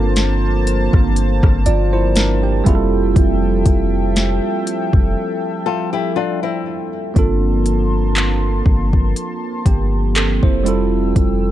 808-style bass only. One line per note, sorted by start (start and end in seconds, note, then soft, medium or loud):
0.00 0.89 G1 loud
0.94 1.41 G1 loud
1.43 1.65 G1 loud
1.67 2.62 G1 loud
2.67 3.14 F1 loud
3.16 3.64 F1 loud
3.66 4.40 F1 loud
4.94 5.15 F1 loud
7.16 8.62 G1 loud
8.66 9.14 G1 loud
9.66 10.40 G1 loud
10.43 11.13 F1 loud
11.16 11.51 F1 loud